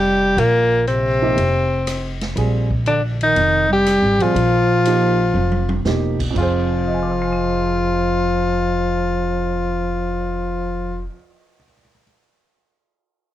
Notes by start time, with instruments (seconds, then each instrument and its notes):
Already playing: upright bass F1, bass clarinet G3, tenor saxophone G4
0.37 upright bass A#1, bass clarinet A#2, tenor saxophone A#3, ride
0.87 bass clarinet C3, tenor saxophone C4, hi-hat pedal, ride
1.22 grand piano F3 A#3 D#4 G4
1.37 upright bass F1, ride
1.87 cross-stick, hi-hat pedal, ride
2.21 snare, ride
2.36 upright bass A#1, grand piano G3 C4 F4 G#4, ride
2.71 kick
2.86 bass clarinet D3, tenor saxophone D4, hi-hat pedal, ride
3.20 bass clarinet D#3, tenor saxophone D#4, ride
3.36 upright bass F1, ride
3.69 bass clarinet G3, tenor saxophone G4
3.86 cross-stick, hi-hat pedal, ride
4.02 upright bass G#1
4.19 upright bass A1, bass clarinet F3, grand piano G3 C4 F4 G#4, tenor saxophone F4, ride
4.35 upright bass A#1, ride
4.85 grand piano F3 A#3 D#4 G4, hi-hat pedal, ride
5.34 upright bass F1, high tom
5.52 high tom
5.69 high tom
5.85 upright bass E1, grand piano F3 A#3 D#4 G4, snare, hi-hat pedal
6.20 kick, crash
6.31 grand piano F2 F3
6.35 upright bass F1, bass clarinet F3, grand piano C4, tenor saxophone F4, kick, crash
6.39 grand piano G#4 C5
6.69 cymbal swell
6.87 grand piano D#5
6.94 grand piano G#5
7.03 grand piano D6
7.11 grand piano F6
7.22 grand piano C7
7.32 grand piano D#7